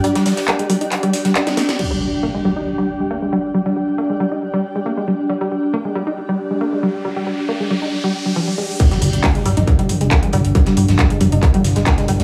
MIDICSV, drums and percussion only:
0, 0, Header, 1, 2, 480
1, 0, Start_track
1, 0, Tempo, 437956
1, 44, Time_signature, 4, 2, 24, 8
1, 13413, End_track
2, 0, Start_track
2, 0, Title_t, "Drums"
2, 44, Note_on_c, 9, 42, 68
2, 51, Note_off_c, 9, 42, 0
2, 51, Note_on_c, 9, 42, 87
2, 160, Note_off_c, 9, 42, 0
2, 169, Note_on_c, 9, 38, 53
2, 169, Note_on_c, 9, 42, 68
2, 278, Note_off_c, 9, 38, 0
2, 279, Note_off_c, 9, 42, 0
2, 279, Note_on_c, 9, 46, 73
2, 283, Note_off_c, 9, 46, 0
2, 283, Note_on_c, 9, 46, 101
2, 287, Note_on_c, 9, 38, 105
2, 393, Note_off_c, 9, 46, 0
2, 396, Note_off_c, 9, 38, 0
2, 409, Note_on_c, 9, 38, 116
2, 410, Note_on_c, 9, 42, 68
2, 411, Note_on_c, 9, 46, 68
2, 517, Note_off_c, 9, 38, 0
2, 517, Note_on_c, 9, 38, 115
2, 519, Note_off_c, 9, 42, 0
2, 521, Note_off_c, 9, 46, 0
2, 524, Note_on_c, 9, 39, 127
2, 524, Note_on_c, 9, 42, 68
2, 525, Note_off_c, 9, 42, 0
2, 525, Note_on_c, 9, 42, 86
2, 626, Note_off_c, 9, 38, 0
2, 633, Note_off_c, 9, 39, 0
2, 634, Note_off_c, 9, 42, 0
2, 649, Note_on_c, 9, 42, 68
2, 759, Note_off_c, 9, 42, 0
2, 763, Note_on_c, 9, 46, 104
2, 768, Note_on_c, 9, 42, 64
2, 873, Note_off_c, 9, 46, 0
2, 877, Note_off_c, 9, 42, 0
2, 890, Note_on_c, 9, 42, 69
2, 999, Note_off_c, 9, 42, 0
2, 1004, Note_on_c, 9, 39, 65
2, 1004, Note_on_c, 9, 42, 67
2, 1006, Note_off_c, 9, 42, 0
2, 1006, Note_on_c, 9, 42, 91
2, 1113, Note_off_c, 9, 39, 0
2, 1116, Note_off_c, 9, 42, 0
2, 1130, Note_on_c, 9, 42, 66
2, 1239, Note_off_c, 9, 42, 0
2, 1244, Note_on_c, 9, 46, 103
2, 1247, Note_on_c, 9, 42, 71
2, 1250, Note_on_c, 9, 38, 41
2, 1353, Note_off_c, 9, 46, 0
2, 1357, Note_off_c, 9, 42, 0
2, 1359, Note_off_c, 9, 38, 0
2, 1366, Note_on_c, 9, 38, 37
2, 1370, Note_on_c, 9, 42, 68
2, 1476, Note_off_c, 9, 38, 0
2, 1479, Note_off_c, 9, 42, 0
2, 1484, Note_on_c, 9, 38, 109
2, 1484, Note_on_c, 9, 39, 127
2, 1484, Note_on_c, 9, 42, 82
2, 1593, Note_off_c, 9, 39, 0
2, 1594, Note_off_c, 9, 38, 0
2, 1594, Note_off_c, 9, 42, 0
2, 1609, Note_on_c, 9, 38, 52
2, 1610, Note_off_c, 9, 38, 0
2, 1610, Note_on_c, 9, 38, 52
2, 1610, Note_on_c, 9, 42, 66
2, 1720, Note_off_c, 9, 38, 0
2, 1720, Note_off_c, 9, 42, 0
2, 1722, Note_on_c, 9, 42, 71
2, 1724, Note_on_c, 9, 38, 79
2, 1724, Note_on_c, 9, 46, 102
2, 1832, Note_off_c, 9, 42, 0
2, 1833, Note_off_c, 9, 38, 0
2, 1833, Note_off_c, 9, 46, 0
2, 1849, Note_on_c, 9, 38, 39
2, 1850, Note_off_c, 9, 38, 0
2, 1850, Note_on_c, 9, 38, 80
2, 1850, Note_on_c, 9, 42, 67
2, 1959, Note_off_c, 9, 38, 0
2, 1959, Note_off_c, 9, 42, 0
2, 1964, Note_on_c, 9, 49, 81
2, 2073, Note_off_c, 9, 49, 0
2, 9643, Note_on_c, 9, 42, 83
2, 9644, Note_off_c, 9, 42, 0
2, 9644, Note_on_c, 9, 36, 119
2, 9644, Note_on_c, 9, 42, 69
2, 9644, Note_on_c, 9, 49, 104
2, 9754, Note_off_c, 9, 36, 0
2, 9754, Note_off_c, 9, 42, 0
2, 9754, Note_off_c, 9, 49, 0
2, 9770, Note_on_c, 9, 42, 69
2, 9770, Note_on_c, 9, 45, 62
2, 9773, Note_on_c, 9, 38, 60
2, 9879, Note_off_c, 9, 42, 0
2, 9879, Note_off_c, 9, 45, 0
2, 9883, Note_off_c, 9, 38, 0
2, 9884, Note_on_c, 9, 46, 107
2, 9895, Note_on_c, 9, 42, 69
2, 9993, Note_off_c, 9, 46, 0
2, 10004, Note_off_c, 9, 42, 0
2, 10009, Note_on_c, 9, 42, 70
2, 10013, Note_off_c, 9, 42, 0
2, 10013, Note_on_c, 9, 42, 47
2, 10117, Note_on_c, 9, 38, 125
2, 10122, Note_off_c, 9, 42, 0
2, 10122, Note_on_c, 9, 46, 84
2, 10124, Note_on_c, 9, 36, 116
2, 10124, Note_on_c, 9, 39, 127
2, 10124, Note_on_c, 9, 42, 73
2, 10124, Note_on_c, 9, 45, 67
2, 10226, Note_off_c, 9, 38, 0
2, 10231, Note_off_c, 9, 46, 0
2, 10233, Note_off_c, 9, 39, 0
2, 10233, Note_off_c, 9, 42, 0
2, 10233, Note_off_c, 9, 45, 0
2, 10234, Note_off_c, 9, 36, 0
2, 10249, Note_on_c, 9, 42, 71
2, 10359, Note_off_c, 9, 42, 0
2, 10363, Note_on_c, 9, 46, 104
2, 10366, Note_on_c, 9, 42, 63
2, 10473, Note_off_c, 9, 46, 0
2, 10476, Note_off_c, 9, 42, 0
2, 10490, Note_on_c, 9, 42, 69
2, 10490, Note_on_c, 9, 45, 65
2, 10599, Note_off_c, 9, 42, 0
2, 10599, Note_off_c, 9, 45, 0
2, 10603, Note_on_c, 9, 42, 70
2, 10604, Note_on_c, 9, 36, 120
2, 10606, Note_off_c, 9, 42, 0
2, 10606, Note_on_c, 9, 42, 81
2, 10714, Note_off_c, 9, 36, 0
2, 10715, Note_off_c, 9, 42, 0
2, 10729, Note_on_c, 9, 42, 69
2, 10839, Note_off_c, 9, 42, 0
2, 10841, Note_on_c, 9, 42, 75
2, 10843, Note_on_c, 9, 45, 63
2, 10843, Note_on_c, 9, 46, 107
2, 10951, Note_off_c, 9, 42, 0
2, 10953, Note_off_c, 9, 45, 0
2, 10953, Note_off_c, 9, 46, 0
2, 10970, Note_on_c, 9, 42, 68
2, 11079, Note_off_c, 9, 42, 0
2, 11081, Note_on_c, 9, 38, 112
2, 11082, Note_on_c, 9, 42, 86
2, 11083, Note_off_c, 9, 42, 0
2, 11083, Note_on_c, 9, 39, 127
2, 11083, Note_on_c, 9, 42, 74
2, 11084, Note_on_c, 9, 36, 124
2, 11190, Note_off_c, 9, 38, 0
2, 11193, Note_off_c, 9, 36, 0
2, 11193, Note_off_c, 9, 39, 0
2, 11193, Note_off_c, 9, 42, 0
2, 11209, Note_on_c, 9, 42, 72
2, 11209, Note_on_c, 9, 45, 66
2, 11213, Note_off_c, 9, 42, 0
2, 11213, Note_on_c, 9, 42, 44
2, 11318, Note_off_c, 9, 42, 0
2, 11318, Note_on_c, 9, 42, 72
2, 11319, Note_off_c, 9, 45, 0
2, 11323, Note_on_c, 9, 46, 105
2, 11428, Note_off_c, 9, 42, 0
2, 11433, Note_off_c, 9, 46, 0
2, 11449, Note_on_c, 9, 42, 69
2, 11559, Note_off_c, 9, 42, 0
2, 11563, Note_on_c, 9, 42, 69
2, 11563, Note_on_c, 9, 45, 64
2, 11564, Note_on_c, 9, 36, 122
2, 11566, Note_off_c, 9, 42, 0
2, 11566, Note_on_c, 9, 42, 99
2, 11673, Note_off_c, 9, 36, 0
2, 11673, Note_off_c, 9, 45, 0
2, 11675, Note_off_c, 9, 42, 0
2, 11683, Note_on_c, 9, 38, 61
2, 11689, Note_on_c, 9, 42, 72
2, 11792, Note_off_c, 9, 38, 0
2, 11799, Note_off_c, 9, 42, 0
2, 11803, Note_on_c, 9, 46, 109
2, 11805, Note_on_c, 9, 42, 67
2, 11913, Note_off_c, 9, 46, 0
2, 11915, Note_off_c, 9, 42, 0
2, 11930, Note_on_c, 9, 42, 70
2, 11930, Note_on_c, 9, 45, 64
2, 11933, Note_on_c, 9, 38, 57
2, 12039, Note_off_c, 9, 42, 0
2, 12039, Note_off_c, 9, 45, 0
2, 12040, Note_on_c, 9, 42, 94
2, 12043, Note_off_c, 9, 38, 0
2, 12044, Note_off_c, 9, 42, 0
2, 12044, Note_on_c, 9, 36, 121
2, 12044, Note_on_c, 9, 39, 126
2, 12044, Note_on_c, 9, 42, 71
2, 12045, Note_on_c, 9, 38, 127
2, 12153, Note_off_c, 9, 36, 0
2, 12153, Note_off_c, 9, 39, 0
2, 12153, Note_off_c, 9, 42, 0
2, 12155, Note_off_c, 9, 38, 0
2, 12169, Note_on_c, 9, 42, 70
2, 12279, Note_off_c, 9, 42, 0
2, 12281, Note_on_c, 9, 42, 66
2, 12283, Note_on_c, 9, 45, 63
2, 12283, Note_on_c, 9, 46, 109
2, 12391, Note_off_c, 9, 42, 0
2, 12393, Note_off_c, 9, 45, 0
2, 12393, Note_off_c, 9, 46, 0
2, 12409, Note_on_c, 9, 42, 71
2, 12519, Note_off_c, 9, 42, 0
2, 12523, Note_on_c, 9, 39, 65
2, 12523, Note_on_c, 9, 42, 69
2, 12524, Note_on_c, 9, 36, 126
2, 12528, Note_off_c, 9, 42, 0
2, 12528, Note_on_c, 9, 42, 91
2, 12633, Note_off_c, 9, 39, 0
2, 12634, Note_off_c, 9, 36, 0
2, 12637, Note_off_c, 9, 42, 0
2, 12649, Note_on_c, 9, 42, 70
2, 12649, Note_on_c, 9, 45, 65
2, 12758, Note_off_c, 9, 42, 0
2, 12758, Note_off_c, 9, 45, 0
2, 12763, Note_on_c, 9, 46, 111
2, 12765, Note_on_c, 9, 38, 42
2, 12766, Note_on_c, 9, 42, 72
2, 12872, Note_off_c, 9, 46, 0
2, 12875, Note_off_c, 9, 38, 0
2, 12876, Note_off_c, 9, 42, 0
2, 12885, Note_on_c, 9, 38, 42
2, 12889, Note_on_c, 9, 42, 72
2, 12994, Note_off_c, 9, 38, 0
2, 12998, Note_off_c, 9, 42, 0
2, 12998, Note_on_c, 9, 42, 86
2, 13004, Note_off_c, 9, 42, 0
2, 13004, Note_on_c, 9, 36, 126
2, 13004, Note_on_c, 9, 39, 126
2, 13004, Note_on_c, 9, 42, 73
2, 13004, Note_on_c, 9, 45, 66
2, 13008, Note_on_c, 9, 38, 118
2, 13113, Note_off_c, 9, 39, 0
2, 13113, Note_off_c, 9, 42, 0
2, 13113, Note_off_c, 9, 45, 0
2, 13114, Note_off_c, 9, 36, 0
2, 13118, Note_off_c, 9, 38, 0
2, 13127, Note_on_c, 9, 38, 50
2, 13130, Note_on_c, 9, 42, 72
2, 13236, Note_off_c, 9, 38, 0
2, 13239, Note_off_c, 9, 42, 0
2, 13241, Note_on_c, 9, 42, 69
2, 13243, Note_on_c, 9, 46, 110
2, 13350, Note_off_c, 9, 42, 0
2, 13353, Note_off_c, 9, 46, 0
2, 13369, Note_on_c, 9, 38, 41
2, 13370, Note_on_c, 9, 42, 71
2, 13370, Note_on_c, 9, 45, 64
2, 13413, Note_off_c, 9, 38, 0
2, 13413, Note_off_c, 9, 42, 0
2, 13413, Note_off_c, 9, 45, 0
2, 13413, End_track
0, 0, End_of_file